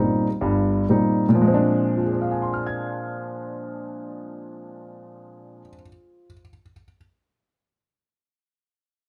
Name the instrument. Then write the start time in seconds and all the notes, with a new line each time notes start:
grand piano
Already playing: A#2 G3 C4 D#4
0.41 G1 G2
0.89 A#2 G3 C4 D#4
1.29 A#2
1.35 F3
1.41 G#3
1.47 C4
1.54 D4
1.97 F4
2.04 G#4
2.12 C5
2.21 F5
2.31 G#5
2.42 C6
2.54 F6
2.66 G#6